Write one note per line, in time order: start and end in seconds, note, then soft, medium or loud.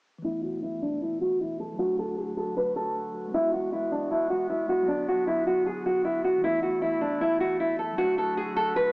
0.18 1.73 E3 medium
0.18 1.75 A3 medium
0.24 1.78 B2 medium
0.24 1.78 E3 medium
0.24 3.31 A3 medium
0.24 1.77 B3 medium
0.24 1.78 E4 medium
0.24 0.42 E4 loud
0.30 1.79 E4 medium
0.43 0.61 F#4 medium
0.63 0.80 E4 medium
0.82 1.00 D4 medium
1.02 1.19 E4 medium
1.21 1.38 F#4 medium
1.41 1.58 E4 medium
1.60 1.77 A4 medium
1.73 3.28 F#3 medium
1.73 3.30 A3 medium
1.79 3.32 D3 medium
1.79 3.32 F#3 medium
1.79 3.32 D4 medium
1.79 1.96 F#4 medium
1.79 6.40 F#4 medium
1.85 3.34 F#4 medium
1.99 2.16 A4 medium
2.18 2.35 G#4 medium
2.37 2.54 A4 medium
2.57 2.74 B4 medium
2.76 3.30 A4 medium
3.28 4.64 G#3 medium
3.28 4.66 B3 medium
3.34 4.87 E3 medium
3.34 4.87 G#3 medium
3.34 6.41 B3 medium
3.34 3.52 E4 loud
3.34 4.68 E4 medium
3.40 4.70 F#4 medium
3.54 3.71 F#4 medium
3.73 3.90 E4 medium
3.92 4.09 D4 medium
4.11 4.29 E4 medium
4.30 4.48 F#4 medium
4.50 4.67 E4 medium
4.66 4.87 G#3 soft
4.66 4.85 B3 soft
4.66 4.89 E4 soft
4.66 4.87 F#4 medium
4.72 4.90 F#4 medium
4.83 6.37 F#3 medium
4.83 6.39 B3 medium
4.88 6.42 D3 medium
4.88 6.42 F#3 medium
4.88 5.06 D4 medium
4.88 6.41 D4 medium
4.94 6.43 F#4 medium
5.08 5.26 F#4 medium
5.27 5.45 E4 medium
5.47 5.64 F#4 medium
5.66 5.84 G#4 medium
5.86 6.03 F#4 medium
6.05 6.22 E4 medium
6.24 6.42 F#4 medium
6.38 7.92 E3 medium
6.38 7.94 A3 medium
6.44 7.81 B2 medium
6.44 7.81 E3 medium
6.44 8.92 A3 medium
6.44 7.96 B3 medium
6.44 7.81 E4 medium
6.44 6.61 E4 loud
6.49 7.98 E4 medium
6.63 6.80 F#4 medium
6.82 6.99 E4 medium
7.01 7.19 D4 medium
7.21 7.38 E4 medium
7.40 7.58 F#4 medium
7.60 7.77 E4 medium
7.79 7.96 A4 medium
7.93 8.92 F#3 medium
7.93 8.92 A3 medium
7.98 8.92 D3 medium
7.98 8.92 F#3 medium
7.98 8.92 D4 medium
7.98 8.16 F#4 medium
7.98 8.92 F#4 medium
8.04 8.92 F#4 medium
8.18 8.35 A4 medium
8.37 8.55 G#4 medium
8.56 8.74 A4 medium
8.76 8.92 B4 medium